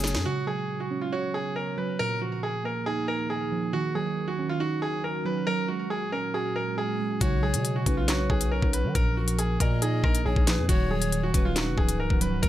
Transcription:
0.00 0.16 F#1 loud
0.00 0.24 A#2 medium
0.00 0.27 F#3 loud
0.00 0.04 G#3 medium
0.00 0.24 G#3 medium
0.00 0.26 G#3 medium
0.00 0.26 C#4 medium
0.00 0.22 F#4 medium
0.00 0.25 F#4 loud
0.00 0.23 G#4 medium
0.00 0.22 C#5 medium
0.00 snare loud
0.00 closed hi-hat medium
0.07 closed hi-hat medium
0.15 0.25 F#2 loud
0.15 snare loud
0.25 1.98 C#3 medium
0.25 1.34 C#3 loud
0.25 1.98 B3 medium
0.25 1.98 F#4 medium
0.25 0.44 F#4 loud
0.47 1.56 F#3 medium
0.47 0.78 G#4 medium
0.80 0.99 F#4 medium
0.91 1.99 C#4 loud
1.01 1.11 F4 medium
1.12 1.31 F#4 medium
1.12 1.99 C#5 loud
1.34 1.53 G#4 medium
1.56 1.75 A#4 medium
1.77 1.99 F#3 medium
1.77 1.97 B4 medium
1.99 3.08 A#2 loud
1.99 5.44 D#3 medium
1.99 3.72 A#3 medium
1.99 3.72 G#4 medium
1.99 2.18 A#4 loud
2.21 3.30 F3 medium
2.21 2.40 F#4 medium
2.43 2.62 G#4 medium
2.64 3.73 A#3 medium
2.64 2.84 A#4 medium
2.86 3.74 D#4 loud
2.86 3.05 G#4 medium
3.08 3.27 A#4 medium
3.30 3.71 G#4 medium
3.52 3.73 F3 medium
3.73 4.82 D#3 loud
3.73 5.46 C#4 medium
3.73 3.92 F#4 loud
3.73 7.18 F#4 medium
3.95 5.04 F#3 medium
3.95 4.26 G#4 medium
4.28 4.47 F#4 medium
4.39 5.47 C#4 medium
4.49 4.59 F4 medium
4.60 5.47 D#4 loud
4.60 4.79 F#4 loud
4.82 5.01 G#4 medium
5.04 5.23 A#4 medium
5.25 5.46 F#3 medium
5.25 5.44 B4 medium
5.47 7.19 A#2 medium
5.47 6.56 F#3 loud
5.47 7.19 G#3 medium
5.47 5.66 A#4 loud
5.68 6.78 G#3 medium
5.68 5.87 F#4 medium
5.90 6.09 G#4 medium
6.12 7.21 C#4 medium
6.12 6.31 A#4 medium
6.34 7.21 F#4 loud
6.34 6.53 G#4 medium
6.56 6.75 A#4 medium
6.78 7.19 G#4 medium
7.00 7.21 G#3 medium
7.21 7.55 B1 loud
7.21 8.93 C#3 medium
7.21 8.30 C#3 loud
7.21 8.93 B3 medium
7.21 8.93 F#4 medium
7.21 7.40 F#4 loud
7.21 7.83 C#5 loud
7.21 kick loud
7.21 closed hi-hat medium
7.42 8.51 F#3 medium
7.42 7.74 G#4 medium
7.54 7.85 B2 medium
7.54 closed hi-hat medium
7.65 closed hi-hat medium
7.76 7.95 F#4 medium
7.86 8.28 B1 loud
7.86 8.95 C#4 loud
7.86 8.91 B4 medium
7.86 kick medium
7.86 closed hi-hat medium
7.97 8.07 F4 medium
8.08 8.27 F#4 medium
8.08 8.95 C#5 loud
8.08 snare loud
8.08 clap loud
8.08 closed hi-hat medium
8.30 8.61 B1 loud
8.30 8.49 G#4 medium
8.30 kick medium
8.41 closed hi-hat medium
8.52 8.70 A#4 medium
8.62 8.86 B1 loud
8.62 kick loud
8.73 8.95 F#3 medium
8.73 8.92 B4 medium
8.73 closed hi-hat medium
8.84 8.95 D#3 loud
8.95 9.58 A#1 loud
8.95 10.04 A#2 loud
8.95 12.39 D#3 medium
8.95 10.67 A#3 medium
8.95 10.67 G#4 medium
8.95 9.14 A#4 loud
8.95 kick loud
8.95 closed hi-hat medium
9.17 10.26 F3 medium
9.17 9.36 F#4 medium
9.17 9.58 A#4 medium
9.28 closed hi-hat medium
9.39 9.58 G#4 medium
9.39 closed hi-hat medium
9.60 10.02 A#2 loud
9.60 10.69 A#3 medium
9.60 9.79 A#4 medium
9.60 10.22 D#5 medium
9.60 kick medium
9.60 closed hi-hat medium
9.82 10.69 D#4 loud
9.82 10.01 G#4 medium
9.82 closed hi-hat medium
10.04 10.25 A#1 loud
10.04 10.23 A#4 medium
10.04 kick medium
10.04 cross-stick loud
10.15 closed hi-hat medium
10.25 10.36 A#1 loud
10.25 10.66 G#4 medium
10.25 10.46 C#5 medium
10.36 10.60 A#1 loud
10.36 kick loud
10.47 10.69 F3 loud
10.47 10.68 B4 medium
10.47 snare loud
10.47 clap medium
10.47 closed hi-hat medium
10.58 10.68 F2 loud
10.69 11.32 D#1 loud
10.69 11.78 D#3 loud
10.69 12.41 C#4 medium
10.69 10.88 F#4 loud
10.69 12.49 F#4 medium
10.69 11.30 C#5 loud
10.69 kick loud
10.69 closed hi-hat medium
10.91 12.00 F#3 medium
10.91 11.21 G#4 medium
11.02 closed hi-hat medium
11.12 closed hi-hat medium
11.23 11.42 F#4 medium
11.34 11.68 D#1 loud
11.34 12.43 C#4 medium
11.34 12.39 B4 medium
11.34 kick medium
11.34 closed hi-hat medium
11.45 11.55 F4 medium
11.56 12.43 D#4 loud
11.56 11.75 F#4 medium
11.56 snare loud
11.56 clap loud
11.56 closed hi-hat medium
11.67 11.77 F1 loud
11.78 12.09 C#1 loud
11.78 11.96 G#4 medium
11.78 kick medium
11.89 closed hi-hat medium
12.00 12.18 A#4 medium
12.10 12.42 C#1 loud
12.10 kick medium
12.21 12.42 F#3 loud
12.21 12.40 B4 medium
12.21 closed hi-hat medium
12.43 12.49 F#1 loud
12.43 12.49 A#2 medium
12.43 12.49 F#3 loud
12.43 12.49 G#3 medium
12.43 12.49 A#4 loud
12.43 kick loud
12.43 closed hi-hat medium

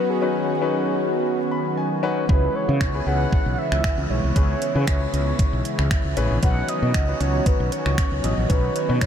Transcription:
0.00 2.25 D#3 medium
0.00 2.25 F#3 medium
0.00 6.39 B3 medium
0.00 2.25 C#4 medium
0.00 2.25 F#4 medium
0.00 0.11 B4 loud
0.10 1.13 G#4 medium
0.22 0.50 C#4 medium
0.22 0.51 D#4 medium
0.22 0.51 F#4 medium
0.22 0.51 B4 medium
0.62 1.37 C#4 medium
0.62 1.37 D#4 medium
0.62 1.37 F#4 medium
0.62 1.37 B4 medium
1.51 1.76 B5 medium
1.77 2.01 G#5 medium
2.03 2.22 C#4 medium
2.03 2.22 D#4 medium
2.03 2.22 F#4 medium
2.03 2.23 B4 loud
2.03 2.27 F#5 medium
2.29 2.48 C#2 loud
2.29 6.39 C#3 medium
2.29 6.39 E3 medium
2.29 6.39 G#3 medium
2.29 2.76 C#4 medium
2.29 6.39 E4 medium
2.29 2.76 E4 medium
2.29 2.77 G#4 medium
2.29 2.77 B4 medium
2.29 2.57 B4 medium
2.29 kick loud
2.55 3.00 C#5 loud
2.69 2.82 C#3 loud
2.81 2.99 C#2 medium
2.81 finger snap loud
2.81 kick loud
2.94 3.03 C#4 medium
2.94 3.03 E4 medium
2.94 3.03 G#4 medium
2.94 3.04 B4 medium
3.00 3.08 G#5 medium
3.07 3.25 C#2 medium
3.07 3.82 C#4 medium
3.07 3.82 E4 medium
3.07 3.82 G#4 medium
3.07 3.82 B4 medium
3.07 3.60 F#5 loud
3.32 kick loud
3.46 3.55 B1 medium
3.58 4.11 E5 loud
3.72 3.81 C#2 medium
3.72 finger snap medium
3.84 finger snap loud
3.84 kick loud
3.98 4.07 C#2 medium
4.10 4.20 B1 medium
4.10 4.35 C#5 medium
4.24 4.32 C2 medium
4.36 4.54 C#2 loud
4.36 4.64 C#4 medium
4.36 4.64 E4 medium
4.36 4.64 G#4 medium
4.36 4.64 B4 medium
4.36 4.84 C#5 medium
4.36 kick loud
4.36 closed hi-hat medium
4.62 closed hi-hat medium
4.75 4.84 C#3 medium
4.75 5.51 C#4 medium
4.75 5.51 E4 medium
4.75 5.51 G#4 medium
4.75 5.51 B4 medium
4.87 5.06 C#2 medium
4.87 5.12 C#5 medium
4.87 finger snap loud
4.87 kick loud
4.87 closed hi-hat medium
5.13 5.32 C#2 medium
5.13 5.62 C#5 medium
5.13 closed hi-hat soft
5.39 kick loud
5.39 closed hi-hat medium
5.53 5.62 B1 medium
5.65 closed hi-hat medium
5.79 5.88 C#2 medium
5.79 finger snap medium
5.91 6.39 E5 medium
5.91 finger snap loud
5.91 kick loud
5.91 closed hi-hat medium
6.05 6.14 C#2 medium
6.17 6.27 A1 medium
6.17 6.36 C#4 medium
6.17 6.36 E4 medium
6.17 6.36 G#4 medium
6.17 6.36 B4 loud
6.17 closed hi-hat medium
6.31 6.39 A#1 medium
6.43 6.61 B1 loud
6.43 9.06 D#3 medium
6.43 9.06 F#3 medium
6.43 9.06 B3 medium
6.43 9.06 C#4 medium
6.43 6.90 C#4 medium
6.43 6.90 D#4 medium
6.43 9.06 F#4 medium
6.43 6.90 F#4 medium
6.43 6.90 B4 medium
6.43 6.70 F#5 loud
6.43 kick loud
6.43 closed hi-hat medium
6.69 7.22 D#5 loud
6.69 closed hi-hat medium
6.82 6.91 B2 loud
6.94 7.13 C#2 medium
6.94 finger snap loud
6.94 kick loud
6.94 closed hi-hat medium
7.08 7.17 C#4 medium
7.08 7.17 D#4 medium
7.08 7.17 F#4 medium
7.08 7.17 B4 medium
7.20 7.39 C#2 medium
7.20 7.96 C#4 medium
7.20 7.96 D#4 medium
7.20 7.96 F#4 medium
7.20 7.47 C#5 medium
7.20 7.96 C#5 medium
7.20 closed hi-hat soft
7.46 7.73 B4 medium
7.46 kick loud
7.46 closed hi-hat medium
7.60 7.69 B1 medium
7.72 8.25 C#5 loud
7.72 closed hi-hat medium
7.86 7.95 C#2 medium
7.86 finger snap medium
7.98 finger snap loud
7.98 kick loud
7.98 closed hi-hat medium
8.12 8.20 C#2 medium
8.24 8.34 A1 medium
8.24 8.49 D#5 loud
8.24 closed hi-hat medium
8.38 8.46 A#1 medium
8.49 8.68 B1 loud
8.49 8.78 C#4 medium
8.49 8.78 D#4 medium
8.49 8.78 F#4 medium
8.49 8.74 B4 medium
8.49 8.78 C#5 medium
8.49 kick loud
8.49 closed hi-hat medium
8.75 9.03 B4 medium
8.75 closed hi-hat medium
8.89 8.98 B2 loud
8.89 9.06 C#4 medium
8.89 9.06 D#4 medium
8.89 9.06 F#4 medium
8.89 9.06 B4 medium
9.01 9.06 B1 medium
9.01 9.06 C#5 medium
9.01 finger snap loud
9.01 kick loud
9.01 closed hi-hat medium

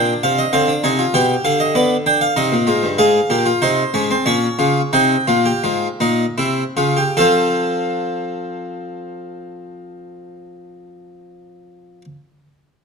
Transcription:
0.00 0.12 A#2 medium
0.00 0.52 D4 medium
0.00 0.11 G5 medium
0.23 0.42 C3 medium
0.23 0.38 F5 medium
0.38 0.53 D#5 medium
0.53 0.72 D3 medium
0.53 0.68 C4 medium
0.53 0.72 F5 medium
0.68 0.84 D4 medium
0.84 1.03 C3 medium
0.84 0.99 D#4 medium
0.84 1.03 G#5 loud
0.99 1.14 F4 medium
1.14 1.33 B2 medium
1.14 1.74 G4 loud
1.14 1.34 G5 loud
1.45 2.34 D3 medium
1.45 1.60 F5 loud
1.60 1.76 D#5 loud
1.75 1.95 B3 medium
1.75 1.95 D5 loud
2.06 2.25 D4 medium
2.06 2.22 G5 loud
2.21 2.37 F5 loud
2.36 2.52 C3 medium
2.36 2.56 D#4 medium
2.36 2.97 D#5 loud
2.52 2.67 A#2 medium
2.67 2.82 G#2 medium
2.67 2.87 F4 medium
2.83 2.98 G2 medium
2.98 3.18 G#2 medium
2.98 3.18 G#4 loud
2.98 3.60 F5 loud
3.30 3.50 A#2 medium
3.30 3.45 G4 loud
3.46 3.61 F4 loud
3.62 3.82 C3 medium
3.62 3.82 D#4 medium
3.62 4.24 C5 medium
3.94 4.14 G#2 medium
3.94 4.09 C#4 medium
4.11 4.26 C4 medium
4.26 4.46 A#2 medium
4.26 4.46 C#4 medium
4.26 4.91 C#5 medium
4.59 4.80 C#3 medium
4.59 4.80 F4 medium
4.93 5.14 C3 medium
4.93 5.14 D#4 loud
4.93 7.13 G5 medium
5.27 5.50 A#2 medium
5.27 5.45 F4 medium
5.46 5.63 G4 medium
5.64 5.86 G#2 medium
5.64 5.86 F4 medium
6.00 6.24 A#2 medium
6.00 6.24 D#4 medium
6.38 6.62 C3 medium
6.38 6.62 E4 medium
6.77 7.02 C#3 medium
6.77 6.96 F4 medium
6.97 7.16 G4 medium
7.17 12.02 F3 medium
7.17 12.05 C4 medium
7.17 12.05 F4 medium
7.17 12.02 A4 medium
7.17 12.02 F5 medium

